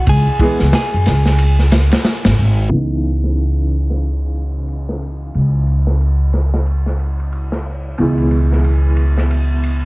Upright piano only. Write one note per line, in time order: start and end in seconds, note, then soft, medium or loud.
0.40 0.62 E3 medium
0.40 0.62 G#3 medium
0.40 0.62 B3 medium
0.40 0.63 G#4 medium
2.69 7.94 C#3 medium
2.69 7.95 E3 medium
2.69 7.96 B3 medium
2.74 7.97 D#4 medium
7.98 9.85 B2 medium
7.98 9.85 E3 medium
7.98 9.85 G#3 medium
8.03 9.85 E4 medium